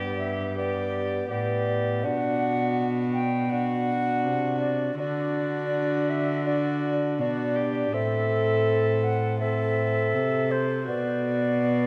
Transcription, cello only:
0.00 1.26 G2 medium
1.30 2.05 A2 medium
2.04 4.26 B2 medium
4.24 4.97 C3 medium
4.98 7.20 D3 medium
7.19 7.92 B2 medium
7.92 10.15 A2 medium
10.13 10.89 C3 medium
10.88 11.87 B2 medium

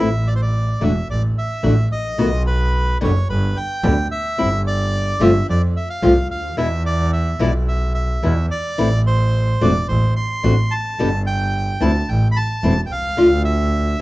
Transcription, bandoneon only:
0.00 0.29 E5 medium
0.27 0.34 D5 medium
0.35 0.41 C5 medium
0.42 0.83 D5 medium
0.83 1.08 E5 medium
1.10 1.22 D5 medium
1.38 1.88 E5 medium
1.92 2.43 D#5 medium
2.47 2.98 B4 medium
3.03 3.28 C#5 medium
3.30 3.57 B4 medium
3.57 4.07 G5 medium
4.11 4.62 E5 loud
4.67 5.23 D5 loud
5.22 5.47 E5 medium
5.50 5.62 D5 medium
5.77 5.89 E5 medium
5.90 6.28 F5 medium
6.31 6.56 F5 medium
6.58 6.83 E5 loud
6.86 7.11 D5 medium
7.13 7.41 E5 medium
7.41 7.53 D5 medium
7.68 7.93 E5 medium
7.94 8.46 E5 medium
8.51 9.02 D5 loud
9.07 9.63 C5 medium
9.62 9.87 D5 medium
9.88 10.14 C5 medium
10.16 10.73 C6 medium
10.71 11.22 A5 loud
11.27 11.83 G5 loud
11.81 12.09 A5 loud
12.09 12.28 G5 medium
12.32 12.37 B5 medium
12.36 12.81 A5 loud
12.86 12.92 G5 medium
12.92 13.42 F5 loud
13.45 14.01 E5 loud

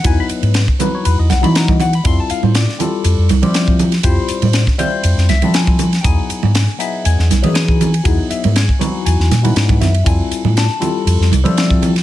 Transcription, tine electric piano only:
0.03 0.63 F#3 medium
0.03 0.63 B3 medium
0.03 0.63 D#4 medium
0.03 0.64 E4 medium
0.03 0.64 B4 medium
0.03 0.19 G#5 medium
0.20 0.27 B5 medium
0.79 1.28 F#3 medium
0.79 1.29 B3 medium
0.79 1.29 D#4 medium
0.79 1.29 E4 medium
0.79 1.04 B4 medium
0.95 1.05 C#5 medium
1.05 1.18 B4 medium
1.19 1.30 D#5 medium
1.30 1.43 F#5 medium
1.41 1.91 F#3 medium
1.41 1.91 B3 medium
1.41 1.91 D#4 medium
1.41 1.92 E4 medium
1.41 1.92 F#4 medium
1.41 1.55 B5 medium
1.56 1.68 A#5 medium
1.70 1.80 D#5 medium
1.81 1.93 F#5 medium
1.95 2.05 B5 medium
2.03 2.63 G3 medium
2.03 2.63 C4 medium
2.03 2.64 E4 medium
2.03 2.64 F4 medium
2.03 2.64 A4 medium
2.03 2.19 C6 medium
2.20 2.30 A5 medium
2.30 2.43 F5 medium
2.44 2.55 C5 medium
2.56 3.26 D5 medium
2.79 3.28 G3 medium
2.79 3.28 C4 medium
2.79 3.28 E4 medium
2.79 3.29 F4 medium
2.79 3.29 A4 medium
3.42 3.91 G3 medium
3.42 3.91 C4 medium
3.42 3.92 E4 medium
3.42 3.92 F4 medium
3.42 3.92 G4 medium
4.03 4.63 G3 medium
4.03 4.63 C4 medium
4.03 4.63 E4 medium
4.03 4.63 F4 medium
4.03 4.64 C5 medium
4.78 5.28 G3 medium
4.78 5.28 C4 medium
4.78 5.28 E4 medium
4.78 5.28 F4 medium
4.78 5.28 C5 medium
5.29 5.54 E5 medium
5.43 5.92 G3 medium
5.43 5.92 C4 medium
5.43 5.92 E4 medium
5.43 5.92 F4 medium
5.43 5.93 A4 medium
5.54 6.01 G#5 medium
6.01 6.63 F#3 medium
6.01 6.63 B3 medium
6.01 6.63 D#4 medium
6.01 6.64 E4 medium
6.01 6.64 G#4 medium
6.01 6.04 G5 medium
6.05 6.76 G#5 medium
6.78 7.28 F#3 medium
6.78 7.28 B3 medium
6.78 7.29 D#4 medium
6.78 7.29 E4 medium
6.78 7.29 G#4 medium
6.78 7.04 E5 medium
7.05 7.52 G#5 medium
7.42 7.92 F#3 medium
7.42 7.92 B3 medium
7.42 7.92 D#4 medium
7.42 7.92 E4 medium
7.42 7.92 G#4 medium
7.54 8.26 G#5 medium
8.03 8.64 F#3 medium
8.03 8.64 B3 medium
8.03 8.64 D#4 medium
8.03 8.64 E4 medium
8.03 8.65 G#4 medium
8.30 8.55 E5 medium
8.56 9.03 G#5 medium
8.79 9.29 F#3 medium
8.79 9.29 B3 medium
8.79 9.29 D#4 medium
8.79 9.30 E4 medium
8.79 9.30 F#4 medium
9.06 9.77 G#5 medium
9.42 9.92 F#3 medium
9.42 9.93 B3 medium
9.42 9.92 D#4 medium
9.42 9.93 E4 medium
9.42 9.93 B4 medium
9.81 10.05 E5 medium
10.04 10.64 G3 medium
10.04 10.65 C4 medium
10.04 10.65 E4 medium
10.04 10.65 F4 medium
10.04 10.65 A4 medium
10.04 10.53 G#5 medium
10.58 11.29 A5 medium
10.80 11.30 G3 medium
10.80 11.30 C4 medium
10.80 11.30 E4 medium
10.80 11.30 F4 medium
10.80 11.31 A4 medium
11.43 11.93 G3 medium
11.43 11.93 C4 medium
11.43 11.93 E4 medium
11.43 11.94 F4 medium
11.43 11.94 A4 medium

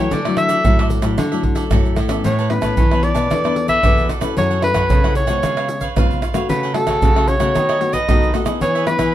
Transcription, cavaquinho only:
0.00 0.10 A4 medium
0.11 0.24 F#4 medium
0.11 0.24 A4 medium
0.11 0.24 D5 medium
0.11 0.24 E5 medium
0.26 0.36 A4 medium
0.26 0.37 D5 medium
0.26 0.37 E5 medium
0.37 muted cavaquinho stroke soft
0.49 0.63 A4 medium
0.49 0.63 D5 medium
0.49 0.62 E5 medium
0.64 0.77 F#4 medium
0.64 0.77 A4 medium
0.64 0.78 D5 medium
0.64 0.78 E5 medium
0.79 1.03 A4 medium
0.79 1.02 D5 medium
0.79 1.01 E5 medium
1.02 1.17 A4 medium
1.02 1.16 D5 medium
1.02 1.16 E5 medium
1.18 1.30 F#4 medium
1.18 1.31 A4 medium
1.18 1.31 D5 soft
1.18 1.31 E5 medium
1.32 1.43 A4 medium
1.32 1.43 D5 medium
1.32 1.43 E5 medium
1.44 muted cavaquinho stroke soft
1.55 1.70 A4 medium
1.55 1.69 D5 medium
1.55 1.69 E5 medium
1.71 1.96 F#4 medium
1.71 1.97 A4 medium
1.71 1.97 D5 medium
1.71 1.98 E5 medium
1.97 2.10 F#4 soft
1.97 2.10 A4 medium
1.97 2.09 D5 medium
1.97 2.08 E5 medium
2.09 2.23 A4 medium
2.09 2.23 D5 medium
2.09 2.22 E5 medium
2.24 2.37 A4 medium
2.24 2.37 B4 medium
2.24 2.37 C#5 soft
2.24 2.38 A5 medium
2.39 2.49 B4 medium
2.39 2.48 C#5 medium
2.39 2.49 A5 medium
2.49 muted cavaquinho stroke soft
2.61 2.76 B4 medium
2.61 2.76 C#5 soft
2.61 2.75 A5 medium
2.77 2.90 A4 medium
2.77 2.90 B4 medium
2.77 2.90 C#5 medium
2.77 2.90 A5 medium
2.91 3.14 B4 medium
2.91 3.16 C#5 medium
2.91 3.13 A5 medium
3.14 3.29 B4 medium
3.14 3.29 C#5 medium
3.14 3.28 A5 medium
3.30 3.43 E4 soft
3.30 3.43 A4 soft
3.30 3.43 B4 soft
3.30 3.43 D5 medium
3.44 3.55 A4 medium
3.44 3.55 B4 medium
3.44 3.56 D5 medium
3.56 muted cavaquinho stroke soft
3.68 3.82 A4 medium
3.68 3.82 B4 medium
3.68 3.81 D5 medium
3.83 4.08 E4 medium
3.83 4.09 A4 medium
3.83 4.09 B4 medium
3.83 4.10 D5 medium
4.09 4.22 E4 medium
4.09 4.21 A4 medium
4.09 4.21 B4 medium
4.09 4.19 D5 medium
4.21 4.35 A4 soft
4.21 4.35 B4 medium
4.21 4.34 D5 medium
4.37 4.49 E4 medium
4.37 4.49 A4 medium
4.37 4.49 C#5 medium
4.37 4.49 F#5 medium
4.50 4.62 A4 medium
4.50 4.62 C#5 medium
4.50 4.62 F#5 medium
4.63 muted cavaquinho stroke soft
4.75 4.89 A4 soft
4.75 4.89 C#5 medium
4.75 4.88 F#5 medium
4.90 5.02 E4 soft
4.90 5.03 A4 medium
4.90 5.03 C#5 medium
4.90 5.03 F#5 medium
5.04 5.28 A4 medium
5.04 5.27 C#5 medium
5.04 5.26 F#5 medium
5.27 5.42 A4 medium
5.27 5.41 C#5 medium
5.27 5.40 F#5 medium
5.43 5.55 F4 soft
5.43 5.56 B4 soft
5.43 5.56 C#5 soft
5.43 5.56 F5 soft
5.57 5.68 B4 medium
5.57 5.68 C#5 medium
5.57 5.68 F5 medium
5.69 muted cavaquinho stroke soft
5.81 5.95 B4 medium
5.81 5.95 C#5 medium
5.81 5.94 F5 medium
5.97 6.21 F4 medium
5.97 6.21 B4 medium
5.97 6.22 C#5 medium
5.97 6.23 F5 medium
6.22 6.34 F4 medium
6.22 6.35 B4 medium
6.22 6.34 C#5 medium
6.22 6.33 F5 medium
6.34 6.48 B4 medium
6.34 6.48 C#5 medium
6.34 6.47 F5 medium
6.49 6.61 F#4 soft
6.49 6.62 A4 medium
6.49 6.62 C#5 medium
6.49 6.62 F#5 medium
6.63 6.74 A4 medium
6.63 6.74 C#5 medium
6.63 6.75 F#5 medium
6.75 muted cavaquinho stroke soft
6.87 7.01 A4 soft
6.87 7.01 C#5 medium
6.87 7.00 F#5 medium
7.03 7.15 F#4 medium
7.03 7.15 A4 medium
7.03 7.15 C#5 medium
7.03 7.15 F#5 medium
7.16 7.41 A4 medium
7.16 7.40 C#5 medium
7.16 7.39 F#5 medium
7.40 7.54 A4 medium
7.40 7.54 C#5 medium
7.40 7.53 F#5 medium
7.55 7.67 D#4 medium
7.55 7.68 A4 soft
7.55 7.68 B4 soft
7.55 7.68 D#5 medium
7.69 7.80 A4 medium
7.69 7.80 B4 medium
7.69 7.81 D#5 medium
7.81 muted cavaquinho stroke soft
7.93 8.07 A4 medium
7.93 8.07 B4 medium
7.93 8.06 D#5 medium
8.09 8.32 D#4 medium
8.09 8.33 A4 medium
8.09 8.34 B4 medium
8.09 8.35 D#5 medium
8.33 8.46 D#4 soft
8.33 8.47 A4 medium
8.33 8.46 B4 medium
8.33 8.44 D#5 medium
8.46 8.60 A4 medium
8.46 8.60 B4 medium
8.46 8.59 D#5 medium
8.61 8.73 E4 soft
8.61 8.74 G#4 medium
8.61 8.74 B4 medium
8.61 8.74 E5 medium
8.75 8.87 G#4 medium
8.75 8.87 B4 medium
8.75 8.87 E5 medium
8.87 muted cavaquinho stroke soft
8.99 9.13 G#4 medium
8.99 9.13 B4 medium
8.99 9.12 E5 medium

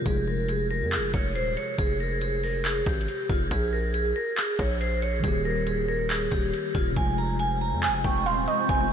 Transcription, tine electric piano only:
0.02 1.73 C3 medium
0.02 1.74 F3 medium
0.07 1.76 G#3 medium
0.07 1.77 F4 medium
5.20 6.91 D#3 medium
5.20 6.92 G3 medium
5.25 6.94 A#3 medium
5.25 6.95 G4 medium
6.92 8.93 C3 medium
6.92 8.93 F3 medium
6.98 8.93 G#3 medium
6.98 8.93 F4 medium

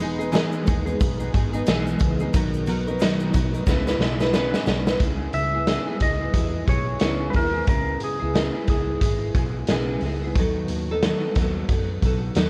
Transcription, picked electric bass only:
0.00 0.41 E1 loud
0.68 0.95 D#2 medium
1.01 1.27 B1 loud
1.34 1.61 G#1 loud
1.68 1.94 B1 loud
2.00 2.27 C#2 medium
2.34 3.30 B1 loud
3.34 3.61 B1 medium
3.67 3.94 C#2 loud
3.99 4.53 B1 loud
4.67 4.94 B1 loud
5.00 5.27 C#2 medium
5.34 5.77 C#2 medium
6.01 6.28 C#2 medium
6.34 6.61 E2 medium
6.68 6.95 B1 medium
7.01 7.28 C#2 medium
7.35 7.61 D#2 loud
7.68 7.95 C#2 loud
8.23 8.49 C#2 medium
8.69 8.95 C#2 medium
9.02 9.28 G#1 medium
9.35 9.62 B1 medium
9.70 9.96 B1 medium
10.02 10.35 C#2 medium
10.35 10.62 D#2 loud
10.69 11.12 D#2 medium
11.36 11.63 D#2 medium
11.69 11.96 F#2 medium
12.03 12.29 B1 medium
12.36 12.50 D#2 medium

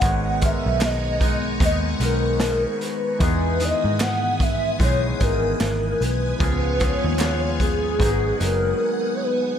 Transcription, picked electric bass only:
0.02 0.53 G#1 loud
0.66 1.58 B1 loud
1.61 1.93 D#2 medium
2.00 2.64 B1 loud
3.20 3.72 E2 loud
3.84 4.81 G#2 medium
4.80 5.12 B1 medium
5.21 5.53 G#1 loud
5.61 5.92 G#1 medium
6.01 6.33 B1 medium
6.40 6.91 C#2 loud
7.04 7.96 D#2 loud
7.99 8.31 G#1 loud
8.41 8.72 F#1 medium

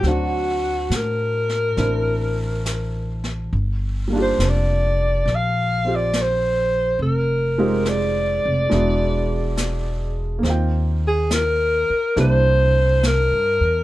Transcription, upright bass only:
0.03 0.86 D2 medium
0.90 1.73 A2 medium
1.77 3.48 A1 medium
3.53 4.35 G1 medium
4.39 5.22 F1 medium
5.25 6.95 A#1 medium
6.99 8.41 F1 medium
8.45 8.70 F1 medium
8.72 10.40 E1 medium
10.43 11.85 D#2 medium
11.90 muted upright bass stroke soft
12.17 13.27 C2 medium
13.31 13.58 G2 soft
13.61 13.84 E2 medium

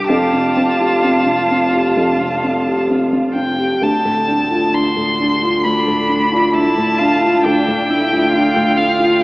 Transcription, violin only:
0.08 2.85 A5 medium
3.35 3.84 G5 medium
3.83 4.75 A5 medium
4.74 5.65 C6 medium
5.64 6.55 B5 medium
6.54 7.44 A5 medium
7.45 8.79 G5 medium
8.77 9.23 F5 medium

